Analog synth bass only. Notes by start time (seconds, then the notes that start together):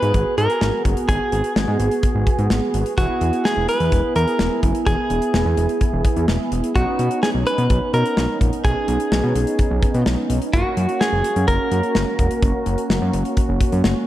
0.02 G#2
0.14 G#1
0.38 G#2
0.61 G#1
0.85 F#1
1.09 G#1
1.32 G#1
1.56 G#1
1.68 G#2
1.79 G#1
2.15 G#1
2.38 G#2
2.50 G#1
2.74 G#1
2.98 E1
3.21 E2
3.57 E1
3.80 E2
3.92 E1
4.16 E2
4.39 E1
4.63 F#1
4.87 E1
5.10 E1
5.34 E1
5.46 E2
5.57 E1
5.93 E1
6.16 E2
6.28 E1
6.52 E1
6.76 B1
6.99 B2
7.35 B1
7.58 B2
7.70 B1
7.94 B2
8.17 B1
8.41 A#1
8.64 B1
8.88 B1
9.12 B1
9.23 B2
9.35 B1
9.71 B1
9.94 B2
10.06 B1
10.30 B1
10.53 F#1
10.77 F#2
11.13 F#1
11.36 F#2
11.48 F#1
11.72 F#2
11.95 F#1
12.19 E1
12.43 F#1
12.66 F#1
12.90 F#1
13.02 F#2
13.13 F#1
13.49 F#1
13.72 F#2
13.84 F#1